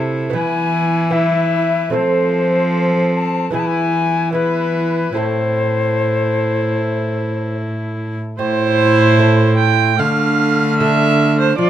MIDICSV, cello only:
0, 0, Header, 1, 2, 480
1, 0, Start_track
1, 0, Key_signature, 0, "minor"
1, 0, Tempo, 802139
1, 1162, Time_signature, 4, 2, 24, 8
1, 7001, End_track
2, 0, Start_track
2, 0, Title_t, "Cello"
2, 0, Program_c, 0, 42
2, 0, Note_on_c, 0, 48, 71
2, 209, Note_on_c, 0, 52, 62
2, 218, Note_off_c, 0, 48, 0
2, 1165, Note_on_c, 0, 53, 69
2, 1174, Note_off_c, 0, 52, 0
2, 2122, Note_off_c, 0, 53, 0
2, 2127, Note_on_c, 0, 52, 59
2, 3068, Note_off_c, 0, 52, 0
2, 3088, Note_on_c, 0, 45, 60
2, 4878, Note_off_c, 0, 45, 0
2, 5024, Note_on_c, 0, 45, 83
2, 5978, Note_on_c, 0, 50, 73
2, 5987, Note_off_c, 0, 45, 0
2, 6928, Note_off_c, 0, 50, 0
2, 6932, Note_on_c, 0, 53, 83
2, 7001, Note_off_c, 0, 53, 0
2, 7001, End_track
0, 0, End_of_file